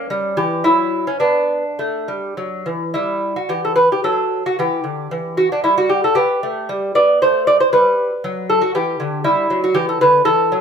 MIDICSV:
0, 0, Header, 1, 2, 480
1, 0, Start_track
1, 0, Key_signature, 1, "minor"
1, 0, Tempo, 552995
1, 1049, Time_signature, 3, 2, 24, 8
1, 1049, Tempo, 580833
1, 2489, Tempo, 547445
1, 3449, Tempo, 525855
1, 6809, Tempo, 507614
1, 9533, End_track
2, 0, Start_track
2, 0, Title_t, "Lute"
2, 0, Program_c, 0, 24
2, 0, Note_on_c, 0, 61, 84
2, 88, Note_on_c, 0, 55, 73
2, 297, Note_off_c, 0, 61, 0
2, 310, Note_off_c, 0, 55, 0
2, 320, Note_on_c, 0, 52, 65
2, 321, Note_on_c, 0, 67, 76
2, 545, Note_off_c, 0, 52, 0
2, 547, Note_off_c, 0, 67, 0
2, 557, Note_on_c, 0, 64, 77
2, 561, Note_on_c, 0, 54, 63
2, 907, Note_off_c, 0, 64, 0
2, 913, Note_off_c, 0, 54, 0
2, 930, Note_on_c, 0, 61, 69
2, 1040, Note_on_c, 0, 62, 67
2, 1043, Note_off_c, 0, 61, 0
2, 1047, Note_on_c, 0, 59, 61
2, 1398, Note_off_c, 0, 59, 0
2, 1529, Note_on_c, 0, 57, 59
2, 1758, Note_off_c, 0, 57, 0
2, 1770, Note_on_c, 0, 55, 57
2, 1996, Note_off_c, 0, 55, 0
2, 2011, Note_on_c, 0, 54, 59
2, 2213, Note_off_c, 0, 62, 0
2, 2239, Note_off_c, 0, 54, 0
2, 2247, Note_on_c, 0, 52, 55
2, 2474, Note_off_c, 0, 52, 0
2, 2479, Note_on_c, 0, 64, 63
2, 2489, Note_on_c, 0, 55, 58
2, 2833, Note_off_c, 0, 64, 0
2, 2838, Note_off_c, 0, 55, 0
2, 2849, Note_on_c, 0, 66, 58
2, 2962, Note_on_c, 0, 52, 58
2, 2965, Note_on_c, 0, 67, 72
2, 2972, Note_off_c, 0, 66, 0
2, 3089, Note_off_c, 0, 67, 0
2, 3098, Note_on_c, 0, 69, 60
2, 3191, Note_off_c, 0, 69, 0
2, 3195, Note_on_c, 0, 71, 74
2, 3308, Note_off_c, 0, 52, 0
2, 3322, Note_off_c, 0, 71, 0
2, 3339, Note_on_c, 0, 67, 68
2, 3442, Note_off_c, 0, 67, 0
2, 3443, Note_on_c, 0, 54, 59
2, 3445, Note_on_c, 0, 69, 75
2, 3796, Note_off_c, 0, 54, 0
2, 3796, Note_off_c, 0, 69, 0
2, 3828, Note_on_c, 0, 66, 67
2, 3942, Note_off_c, 0, 66, 0
2, 3944, Note_on_c, 0, 52, 59
2, 3950, Note_on_c, 0, 67, 70
2, 4168, Note_off_c, 0, 52, 0
2, 4172, Note_on_c, 0, 50, 50
2, 4400, Note_off_c, 0, 50, 0
2, 4423, Note_on_c, 0, 52, 60
2, 4630, Note_off_c, 0, 67, 0
2, 4661, Note_on_c, 0, 66, 68
2, 4761, Note_off_c, 0, 52, 0
2, 4775, Note_off_c, 0, 66, 0
2, 4795, Note_on_c, 0, 62, 65
2, 4898, Note_off_c, 0, 62, 0
2, 4902, Note_on_c, 0, 64, 77
2, 4904, Note_on_c, 0, 55, 54
2, 5013, Note_off_c, 0, 64, 0
2, 5028, Note_on_c, 0, 66, 72
2, 5135, Note_off_c, 0, 66, 0
2, 5136, Note_on_c, 0, 67, 71
2, 5240, Note_off_c, 0, 55, 0
2, 5249, Note_off_c, 0, 67, 0
2, 5271, Note_on_c, 0, 69, 72
2, 5371, Note_on_c, 0, 67, 77
2, 5376, Note_off_c, 0, 69, 0
2, 5379, Note_on_c, 0, 59, 57
2, 5602, Note_off_c, 0, 59, 0
2, 5625, Note_on_c, 0, 57, 54
2, 5849, Note_off_c, 0, 57, 0
2, 5864, Note_on_c, 0, 55, 63
2, 6069, Note_off_c, 0, 67, 0
2, 6089, Note_off_c, 0, 55, 0
2, 6100, Note_on_c, 0, 59, 57
2, 6103, Note_on_c, 0, 74, 75
2, 6326, Note_off_c, 0, 59, 0
2, 6329, Note_off_c, 0, 74, 0
2, 6346, Note_on_c, 0, 72, 74
2, 6358, Note_on_c, 0, 57, 59
2, 6569, Note_off_c, 0, 72, 0
2, 6576, Note_on_c, 0, 74, 83
2, 6690, Note_off_c, 0, 57, 0
2, 6692, Note_off_c, 0, 74, 0
2, 6697, Note_on_c, 0, 72, 75
2, 6805, Note_off_c, 0, 72, 0
2, 6809, Note_on_c, 0, 71, 83
2, 6815, Note_on_c, 0, 55, 60
2, 7160, Note_off_c, 0, 55, 0
2, 7296, Note_on_c, 0, 54, 67
2, 7502, Note_off_c, 0, 71, 0
2, 7535, Note_on_c, 0, 69, 76
2, 7639, Note_off_c, 0, 54, 0
2, 7650, Note_on_c, 0, 66, 78
2, 7652, Note_off_c, 0, 69, 0
2, 7770, Note_off_c, 0, 66, 0
2, 7774, Note_on_c, 0, 52, 60
2, 7777, Note_on_c, 0, 67, 74
2, 8001, Note_off_c, 0, 52, 0
2, 8011, Note_on_c, 0, 50, 62
2, 8237, Note_off_c, 0, 67, 0
2, 8240, Note_off_c, 0, 50, 0
2, 8243, Note_on_c, 0, 55, 63
2, 8244, Note_on_c, 0, 64, 78
2, 8479, Note_off_c, 0, 55, 0
2, 8488, Note_on_c, 0, 54, 62
2, 8596, Note_off_c, 0, 64, 0
2, 8616, Note_on_c, 0, 66, 70
2, 8717, Note_on_c, 0, 52, 64
2, 8717, Note_on_c, 0, 67, 89
2, 8720, Note_off_c, 0, 54, 0
2, 8735, Note_off_c, 0, 66, 0
2, 8845, Note_off_c, 0, 67, 0
2, 8853, Note_on_c, 0, 69, 71
2, 8951, Note_off_c, 0, 52, 0
2, 8965, Note_off_c, 0, 69, 0
2, 8969, Note_on_c, 0, 71, 86
2, 8975, Note_on_c, 0, 50, 60
2, 9192, Note_off_c, 0, 71, 0
2, 9193, Note_off_c, 0, 50, 0
2, 9195, Note_on_c, 0, 69, 83
2, 9197, Note_on_c, 0, 52, 64
2, 9430, Note_off_c, 0, 52, 0
2, 9449, Note_on_c, 0, 54, 65
2, 9533, Note_off_c, 0, 54, 0
2, 9533, Note_off_c, 0, 69, 0
2, 9533, End_track
0, 0, End_of_file